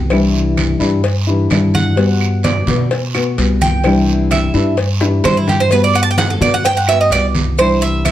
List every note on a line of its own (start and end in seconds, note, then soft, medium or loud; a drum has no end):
0.00 0.74 C2 loud
0.00 0.10 B3 soft
0.00 0.11 F#4 medium
0.10 0.80 C3 medium
0.10 0.80 E3 medium
0.10 0.81 G3 medium
0.10 0.80 D4 medium
0.10 0.78 E4 medium
0.10 cowbell loud
0.10 high conga soft
0.10 long guiro medium
0.10 claves medium
0.35 high conga soft
0.57 cowbell medium
0.57 high conga medium
0.57 short guiro medium
0.57 claves medium
0.80 1.47 G2 loud
0.80 1.03 E3 medium
0.80 1.04 G3 medium
0.80 1.03 D4 medium
0.80 1.03 E4 medium
0.80 high conga soft
0.80 short guiro medium
1.04 muted nylon-string guitar stroke medium
1.04 cowbell loud
1.04 high conga soft
1.04 long guiro medium
1.27 1.50 E3 medium
1.27 1.50 G3 medium
1.27 1.50 D4 medium
1.27 1.50 E4 medium
1.27 high conga soft
1.50 2.61 G2 medium
1.50 1.97 E3 medium
1.50 1.95 G3 medium
1.50 1.97 D4 medium
1.50 1.98 E4 medium
1.50 cowbell medium
1.50 high conga medium
1.50 short guiro medium
1.50 claves medium
1.74 2.41 F#5 medium
1.74 high conga medium
1.74 short guiro medium
1.96 2.71 G3 medium
1.96 2.67 B3 medium
1.96 2.66 F#4 medium
1.96 cowbell loud
1.96 high conga soft
1.96 long guiro medium
2.21 high conga soft
2.21 claves medium
2.43 2.88 D5 medium
2.43 cowbell medium
2.43 high conga loud
2.43 short guiro medium
2.67 3.33 B2 loud
2.67 2.91 B3 medium
2.67 2.90 F#4 medium
2.67 high conga medium
2.67 short guiro medium
2.91 muted nylon-string guitar stroke medium
2.91 cowbell loud
2.91 high conga soft
2.91 long guiro medium
3.15 3.38 B3 medium
3.15 3.37 F#4 medium
3.15 cowbell medium
3.15 high conga soft
3.15 claves medium
3.38 4.48 C2 medium
3.38 3.84 G3 medium
3.38 3.84 B3 medium
3.38 3.84 F#4 medium
3.38 cowbell medium
3.38 high conga soft
3.38 short guiro medium
3.61 4.27 G5 loud
3.61 high conga medium
3.61 short guiro medium
3.84 4.54 C3 medium
3.84 4.54 E3 medium
3.84 4.55 G3 medium
3.84 4.55 D4 medium
3.84 4.53 E4 medium
3.84 cowbell loud
3.84 high conga soft
3.84 long guiro medium
3.84 claves medium
4.09 high conga soft
4.31 4.75 E5 medium
4.31 cowbell medium
4.31 high conga medium
4.31 short guiro medium
4.31 claves medium
4.54 5.20 G2 loud
4.54 4.77 E3 medium
4.54 4.78 G3 medium
4.54 4.77 D4 medium
4.54 4.77 E4 medium
4.54 high conga soft
4.54 short guiro medium
4.77 muted nylon-string guitar stroke medium
4.77 cowbell loud
4.77 high conga soft
4.77 long guiro medium
5.01 5.23 E3 medium
5.01 5.24 G3 medium
5.01 5.24 D4 medium
5.01 5.23 E4 medium
5.01 high bongo medium
5.01 high conga soft
5.24 6.35 G2 medium
5.24 5.70 E3 soft
5.24 5.70 G3 medium
5.24 5.71 D4 medium
5.24 5.71 E4 medium
5.24 5.36 C5 medium
5.24 cowbell medium
5.24 high bongo medium
5.24 high conga medium
5.24 short guiro medium
5.24 claves medium
5.37 5.48 E4 medium
5.48 5.60 G4 medium
5.48 low bongo medium
5.48 high conga medium
5.48 short guiro medium
5.60 5.71 C5 medium
5.71 6.44 G3 medium
5.71 6.41 B3 medium
5.71 6.40 F#4 medium
5.71 5.83 B4 medium
5.71 cowbell loud
5.71 high conga soft
5.71 long guiro medium
5.71 maracas medium
5.84 5.95 D5 medium
5.94 6.02 F#5 loud
5.94 high conga soft
5.94 claves medium
5.94 maracas medium
6.03 6.10 A5 loud
6.11 6.18 G5 medium
6.18 6.29 F#5 medium
6.18 cowbell medium
6.18 high conga loud
6.18 short guiro medium
6.18 maracas medium
6.30 6.41 A4 medium
6.41 7.07 G2 medium
6.41 6.64 B3 medium
6.41 6.64 F#4 medium
6.41 6.53 D5 loud
6.41 high conga loud
6.41 short guiro medium
6.41 maracas soft
6.54 6.65 F#5 loud
6.65 6.76 G5 loud
6.65 muted nylon-string guitar stroke medium
6.65 cowbell loud
6.65 high conga soft
6.65 long guiro medium
6.65 maracas medium
6.77 6.88 F#5 medium
6.88 7.12 B3 medium
6.88 7.11 F#4 medium
6.88 7.00 E5 loud
6.88 cowbell medium
6.88 high conga soft
6.88 claves medium
7.01 7.12 D#5 medium
7.10 8.12 C2 medium
7.10 7.58 G3 soft
7.10 7.58 B3 medium
7.10 7.26 D5 loud
7.10 cowbell medium
7.10 high conga soft
7.10 short guiro medium
7.10 maracas medium
7.15 7.59 F#4 medium
7.35 high conga medium
7.35 short guiro medium
7.35 maracas soft
7.58 8.12 C3 medium
7.58 8.12 E3 medium
7.58 8.12 G3 medium
7.58 8.12 D4 medium
7.58 8.12 E4 medium
7.58 7.81 C5 medium
7.58 cowbell loud
7.58 high conga soft
7.58 long guiro medium
7.58 claves medium
7.58 maracas medium
7.82 8.04 E5 loud
7.82 high conga soft
7.82 maracas medium
8.05 8.12 E5 medium
8.05 cowbell medium
8.05 high conga medium
8.05 short guiro medium
8.05 claves medium
8.05 maracas medium